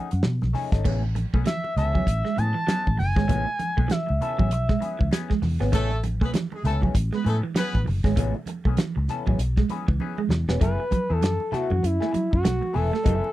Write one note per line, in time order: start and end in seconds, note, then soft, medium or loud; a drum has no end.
0.00 0.24 F#5 loud
0.11 0.22 F#2 medium
0.11 muted hollow-body jazz guitar stroke soft
0.11 closed hi-hat medium
0.23 0.39 B2 loud
0.23 muted hollow-body jazz guitar stroke soft
0.23 snare loud
0.23 muted conga soft
0.23 high conga medium
0.42 0.52 B1 loud
0.42 muted hollow-body jazz guitar stroke soft
0.42 snare soft
0.42 muted conga soft
0.42 high conga medium
0.53 0.70 A3 medium
0.53 0.70 C#4 medium
0.53 0.70 D#4 medium
0.53 0.70 G#4 medium
0.53 snare soft
0.53 open hi-hat medium
0.53 low conga medium
0.72 0.82 G#1 medium
0.72 0.84 A3 soft
0.72 0.83 C#4 medium
0.72 0.83 D#4 medium
0.72 0.83 A4 medium
0.72 kick loud
0.72 snare soft
0.72 closed hi-hat medium
0.84 1.24 A1 medium
0.84 1.04 E3 medium
0.84 0.98 A3 medium
0.84 1.03 B3 medium
0.84 1.03 C#4 medium
0.84 1.03 G#4 medium
0.84 kick loud
0.84 crash loud
0.84 muted conga soft
0.84 low conga medium
1.03 muted hollow-body jazz guitar stroke medium
1.03 muted conga soft
1.15 muted hollow-body jazz guitar stroke soft
1.15 muted clean electric guitar stroke soft
1.15 closed hi-hat medium
1.15 high conga medium
1.34 1.44 B1 medium
1.34 1.45 E3 soft
1.34 1.43 A3 medium
1.34 1.45 B3 medium
1.34 1.45 C#4 medium
1.34 1.45 G#4 medium
1.34 kick medium
1.46 1.59 E3 medium
1.46 1.75 E5 loud
1.46 muted hollow-body jazz guitar stroke soft
1.46 snare loud
1.46 closed hi-hat medium
1.46 high conga medium
1.64 muted clean electric guitar stroke soft
1.64 muted hollow-body jazz guitar stroke soft
1.64 muted conga soft
1.76 2.01 C#2 medium
1.76 1.92 E3 medium
1.76 1.93 B3 medium
1.76 1.93 C#4 medium
1.76 1.93 A4 medium
1.76 2.39 E5 loud
1.76 snare soft
1.76 closed hi-hat medium
1.76 low conga medium
1.94 2.06 E3 medium
1.94 2.04 F#3 medium
1.94 2.06 B3 medium
1.94 2.05 C#4 medium
1.94 2.05 G#4 medium
1.94 kick medium
1.94 high conga medium
2.07 2.22 A1 loud
2.07 muted hollow-body jazz guitar stroke soft
2.07 kick medium
2.07 closed hi-hat loud
2.07 muted conga soft
2.25 2.34 G#3 medium
2.25 snare soft
2.25 muted conga soft
2.36 2.52 A2 loud
2.36 2.53 E3 medium
2.36 2.53 B3 medium
2.36 2.53 C#4 medium
2.36 2.54 G#4 medium
2.36 2.98 A5 loud
2.36 muted clean electric guitar stroke soft
2.36 closed hi-hat medium
2.36 high conga medium
2.54 2.64 E3 medium
2.54 muted hollow-body jazz guitar stroke soft
2.67 2.87 E3 medium
2.67 2.81 F#3 medium
2.67 2.88 B3 medium
2.67 2.88 C#4 medium
2.67 2.88 G#4 medium
2.67 snare loud
2.67 closed hi-hat loud
2.67 high conga medium
2.87 2.97 A1 medium
2.87 kick medium
2.87 muted conga soft
2.87 high conga soft
2.97 3.17 F#1 loud
2.97 3.92 G#5 loud
2.97 muted clean electric guitar stroke soft
2.97 muted hollow-body jazz guitar stroke soft
2.97 open hi-hat medium
2.97 low conga medium
3.16 3.30 G#1 medium
3.16 3.27 E3 soft
3.16 3.25 G#3 medium
3.16 3.27 B3 soft
3.16 3.27 C#4 medium
3.16 3.27 G#4 medium
3.16 kick loud
3.16 snare soft
3.28 3.44 A1 loud
3.28 3.48 E3 loud
3.28 3.42 A3 medium
3.28 3.47 B3 medium
3.28 3.46 C#4 medium
3.28 3.46 G#4 loud
3.28 kick loud
3.28 closed hi-hat loud
3.28 muted conga soft
3.28 low conga medium
3.47 muted hollow-body jazz guitar stroke medium
3.59 muted hollow-body jazz guitar stroke soft
3.59 muted clean electric guitar stroke soft
3.59 closed hi-hat medium
3.59 high conga medium
3.77 3.88 B1 medium
3.77 3.89 E3 soft
3.77 3.86 A3 medium
3.77 3.89 B3 medium
3.77 3.89 C#4 medium
3.77 3.88 G#4 medium
3.77 kick medium
3.88 4.02 E3 medium
3.88 4.21 E5 medium
3.88 muted hollow-body jazz guitar stroke soft
3.88 snare medium
3.88 closed hi-hat medium
3.88 high conga medium
4.07 4.19 C#2 medium
4.07 muted clean electric guitar stroke soft
4.07 muted hollow-body jazz guitar stroke medium
4.07 muted conga soft
4.21 4.36 E3 medium
4.21 4.37 B3 medium
4.21 4.37 C#4 medium
4.21 4.37 A4 medium
4.21 5.09 E5 medium
4.21 closed hi-hat medium
4.21 low conga medium
4.38 4.52 A1 medium
4.38 4.50 E3 medium
4.38 4.47 F#3 medium
4.38 4.50 B3 medium
4.38 4.50 C#4 medium
4.38 4.50 G#4 medium
4.38 kick medium
4.38 high conga medium
4.51 4.76 B1 loud
4.51 closed hi-hat loud
4.69 4.78 G#3 medium
4.69 kick medium
4.69 snare soft
4.80 4.97 E3 medium
4.80 4.97 B3 medium
4.80 4.97 C#4 medium
4.80 4.98 G#4 medium
4.80 muted clean electric guitar stroke soft
4.80 closed hi-hat medium
4.80 high conga medium
4.99 5.10 C#2 medium
4.99 5.08 E3 medium
4.99 kick medium
5.11 5.31 E3 medium
5.11 5.32 B3 medium
5.11 5.32 C#4 medium
5.11 5.32 G#4 medium
5.11 snare loud
5.11 closed hi-hat loud
5.11 muted conga soft
5.11 high conga medium
5.30 5.39 G#3 medium
5.30 kick medium
5.30 snare soft
5.30 muted conga soft
5.30 high conga medium
5.42 5.57 E2 medium
5.42 muted clean electric guitar stroke soft
5.42 muted hollow-body jazz guitar stroke soft
5.42 snare soft
5.42 open hi-hat medium
5.42 low conga medium
5.60 5.73 G#1 loud
5.60 5.71 E3 soft
5.60 5.69 B3 medium
5.60 5.71 B3 medium
5.60 5.71 C#4 medium
5.60 5.71 G#4 medium
5.60 snare soft
5.72 6.22 A1 medium
5.72 5.92 E3 medium
5.72 5.86 A3 medium
5.72 5.98 A3 loud
5.72 5.91 B3 medium
5.72 5.91 C#4 medium
5.72 5.90 G#4 medium
5.72 5.98 A4 loud
5.72 kick loud
5.72 closed hi-hat loud
5.72 muted conga soft
5.72 low conga medium
5.91 muted hollow-body jazz guitar stroke soft
5.91 muted conga soft
6.03 muted hollow-body jazz guitar stroke soft
6.03 muted clean electric guitar stroke soft
6.03 closed hi-hat medium
6.03 high conga medium
6.21 6.31 B1 loud
6.21 6.33 E3 soft
6.21 6.30 A3 medium
6.21 6.33 B3 medium
6.21 6.30 B3 medium
6.21 6.33 C#4 medium
6.21 6.32 G#4 medium
6.21 6.30 B4 medium
6.21 kick medium
6.34 6.47 E3 medium
6.34 snare loud
6.34 closed hi-hat medium
6.34 high conga medium
6.52 6.63 G#3 medium
6.52 6.63 G#4 medium
6.52 muted clean electric guitar stroke soft
6.52 muted hollow-body jazz guitar stroke medium
6.52 muted conga soft
6.64 6.88 C#2 medium
6.64 6.80 E3 medium
6.64 6.76 A3 medium
6.64 6.81 B3 medium
6.64 6.81 C#4 medium
6.64 6.76 A4 medium
6.64 6.81 A4 medium
6.64 snare soft
6.64 closed hi-hat medium
6.64 low conga medium
6.82 6.94 E3 soft
6.82 6.91 F#3 medium
6.82 6.94 B3 medium
6.82 6.94 C#4 medium
6.82 6.94 G#4 medium
6.82 kick medium
6.82 high conga medium
6.94 7.09 A1 medium
6.94 muted hollow-body jazz guitar stroke soft
6.94 kick loud
6.94 closed hi-hat loud
6.94 muted conga soft
7.12 7.22 G#3 medium
7.12 7.23 B3 medium
7.12 7.23 B4 loud
7.12 snare soft
7.12 muted conga soft
7.24 7.40 A2 loud
7.24 7.41 E3 medium
7.24 7.38 A3 medium
7.24 7.41 B3 medium
7.24 7.41 C#4 medium
7.24 7.41 G#4 medium
7.24 7.38 A4 medium
7.24 muted clean electric guitar stroke medium
7.24 closed hi-hat medium
7.24 high conga medium
7.43 7.52 E3 medium
7.43 muted hollow-body jazz guitar stroke soft
7.55 7.76 E3 medium
7.55 7.69 F#3 medium
7.55 7.81 B3 loud
7.55 7.76 B3 medium
7.55 7.76 C#4 medium
7.55 7.77 G#4 medium
7.55 7.81 B4 loud
7.55 snare loud
7.55 closed hi-hat medium
7.55 high conga medium
7.73 7.84 A1 medium
7.73 kick medium
7.73 high conga medium
7.85 8.01 F#1 medium
7.85 muted clean electric guitar stroke soft
7.85 muted hollow-body jazz guitar stroke soft
7.85 open hi-hat medium
7.85 low conga medium
8.04 8.17 G#1 medium
8.04 8.16 E3 medium
8.04 8.14 G#3 medium
8.04 8.15 B3 medium
8.04 8.15 C#4 medium
8.04 8.15 G#4 medium
8.04 kick loud
8.04 snare soft
8.16 8.32 A1 loud
8.16 8.37 E3 medium
8.16 8.30 A3 medium
8.16 8.35 B3 medium
8.16 8.35 C#4 medium
8.16 8.35 G#4 loud
8.16 kick loud
8.16 closed hi-hat loud
8.16 low conga medium
8.34 muted hollow-body jazz guitar stroke medium
8.34 muted conga soft
8.46 muted clean electric guitar stroke soft
8.46 muted hollow-body jazz guitar stroke soft
8.46 closed hi-hat medium
8.46 high conga medium
8.65 8.75 B1 medium
8.65 8.77 E3 soft
8.65 8.74 A3 medium
8.65 8.77 B3 medium
8.65 8.77 C#4 medium
8.65 8.77 G#4 medium
8.65 kick medium
8.77 8.91 E3 medium
8.77 muted hollow-body jazz guitar stroke soft
8.77 snare loud
8.77 closed hi-hat medium
8.77 high conga medium
8.96 9.06 C#2 medium
8.96 muted clean electric guitar stroke soft
8.96 muted hollow-body jazz guitar stroke medium
9.08 9.25 E3 medium
9.08 9.25 B3 medium
9.08 9.25 C#4 medium
9.08 9.25 A4 medium
9.08 snare soft
9.08 closed hi-hat medium
9.08 low conga medium
9.26 9.37 A1 medium
9.26 9.38 E3 medium
9.26 9.36 F#3 medium
9.26 9.38 B3 medium
9.26 9.38 C#4 medium
9.26 9.38 G#4 medium
9.26 kick medium
9.26 high conga medium
9.38 9.63 B1 loud
9.38 muted hollow-body jazz guitar stroke soft
9.38 closed hi-hat loud
9.38 muted conga soft
9.57 9.66 G#3 medium
9.57 kick medium
9.57 snare soft
9.57 muted conga soft
9.69 9.85 E3 medium
9.69 9.86 B3 medium
9.69 9.86 C#4 medium
9.69 9.86 G#4 medium
9.69 muted clean electric guitar stroke soft
9.69 closed hi-hat medium
9.69 high conga medium
9.88 9.98 C#2 medium
9.88 9.97 E3 medium
9.88 kick loud
10.00 10.19 E3 medium
10.00 10.20 B3 medium
10.00 10.20 C#4 medium
10.00 10.20 G#4 medium
10.00 muted conga soft
10.00 high conga medium
10.18 10.27 G#3 medium
10.18 muted conga soft
10.18 high conga soft
10.29 10.44 E2 loud
10.29 muted hollow-body jazz guitar stroke soft
10.29 muted clean electric guitar stroke soft
10.29 snare medium
10.29 low conga medium
10.48 10.58 E1 loud
10.48 10.60 E3 soft
10.48 10.58 B3 medium
10.48 10.60 B3 soft
10.48 10.60 C#4 medium
10.48 10.59 G#4 medium
10.48 snare medium
10.61 10.76 F#1 medium
10.61 10.74 F#3 medium
10.61 10.80 A3 medium
10.61 10.81 B3 medium
10.61 10.81 E4 medium
10.61 10.81 G#4 loud
10.61 11.14 B4 medium
10.61 kick loud
10.61 closed hi-hat medium
10.61 low conga medium
10.80 muted clean electric guitar stroke soft
10.91 11.05 F#3 medium
10.91 muted hollow-body jazz guitar stroke soft
10.91 kick medium
10.91 closed hi-hat medium
10.91 high conga medium
11.10 11.23 E2 medium
11.10 11.20 A3 medium
11.10 11.20 B3 medium
11.10 11.21 E4 medium
11.10 11.20 G#4 medium
11.10 11.55 A4 medium
11.21 11.37 F#2 loud
11.21 11.36 E3 medium
11.21 muted hollow-body jazz guitar stroke soft
11.21 snare loud
11.21 closed hi-hat loud
11.21 high conga medium
11.40 muted hollow-body jazz guitar stroke soft
11.40 muted conga soft
11.52 11.72 A3 medium
11.52 11.70 B3 medium
11.52 11.70 E4 loud
11.52 11.87 F#4 medium
11.52 11.70 A4 loud
11.52 muted clean electric guitar stroke soft
11.52 muted fingered electric bass stroke soft
11.52 snare soft
11.52 closed hi-hat medium
11.52 low conga medium
11.70 11.81 F#2 loud
11.70 11.80 E3 medium
11.70 muted hollow-body jazz guitar stroke soft
11.70 high conga medium
11.83 11.98 F#2 loud
11.83 12.32 E4 loud
11.83 muted hollow-body jazz guitar stroke soft
11.83 muted clean electric guitar stroke soft
11.83 closed hi-hat loud
11.83 muted conga soft
12.00 12.11 A3 medium
12.00 12.12 A3 medium
12.00 12.12 B3 medium
12.00 12.12 E4 medium
12.00 12.12 G#4 medium
12.00 snare soft
12.00 muted conga soft
12.13 12.27 F#3 medium
12.13 muted hollow-body jazz guitar stroke soft
12.13 muted fingered electric bass stroke medium
12.13 closed hi-hat medium
12.13 high conga medium
12.31 12.43 F#2 medium
12.31 12.76 F#4 loud
12.31 muted hollow-body jazz guitar stroke soft
12.31 kick medium
12.43 12.60 B1 loud
12.43 12.58 A3 medium
12.43 muted hollow-body jazz guitar stroke soft
12.43 snare loud
12.43 closed hi-hat loud
12.43 muted conga soft
12.43 high conga medium
12.61 muted hollow-body jazz guitar stroke soft
12.61 muted clean electric guitar stroke soft
12.61 muted conga soft
12.61 high conga soft
12.73 12.90 E1 loud
12.73 12.93 A3 medium
12.73 12.92 B3 medium
12.73 12.92 E4 medium
12.73 12.91 G#4 medium
12.73 13.33 A4 loud
12.73 open hi-hat medium
12.73 low conga medium
12.92 13.02 A3 medium
12.92 muted hollow-body jazz guitar stroke soft
12.92 snare soft
13.04 13.20 F#1 loud
13.04 13.19 F#3 medium
13.04 13.27 A3 loud
13.04 13.27 B3 loud
13.04 13.28 E4 loud
13.04 13.28 G#4 loud
13.04 kick loud
13.04 closed hi-hat medium
13.04 muted conga soft
13.04 low conga medium
13.24 muted conga soft